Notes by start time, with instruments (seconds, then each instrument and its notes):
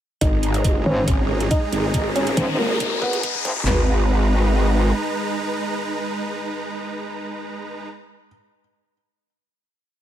0.21 wobble bass G#1, supersaw synth G#3 D#4 G#4 A#5, felt piano D#4 D#5, kick, closed hi-hat, riser
0.43 closed hi-hat
0.54 closed hi-hat
0.64 wobble bass F#1, kick, closed hi-hat
0.86 wobble bass G#1, felt piano C#4 C#5
1.08 wobble bass G#1, kick, closed hi-hat
1.40 closed hi-hat
1.51 felt piano D#4 D#5, kick, closed hi-hat
1.72 wobble bass G#1, closed hi-hat
1.94 wobble bass G#1, kick, closed hi-hat
2.15 felt piano C#4 C#5, closed hi-hat
2.27 closed hi-hat
2.37 wobble bass G#1, kick, closed hi-hat
2.59 wobble bass G#1, felt piano A#3 A#4
2.80 wobble bass G#1, kick, closed hi-hat
3.02 felt piano B3 B4, kick
3.13 closed hi-hat
3.23 kick, closed hi-hat
3.35 kick
3.45 wobble bass G#1, kick, closed hi-hat
3.56 wobble bass G#1, kick
3.67 wobble bass G#1, supersaw synth G#3 D#4 B4 A#5, felt piano B4, snare, clap, floor tom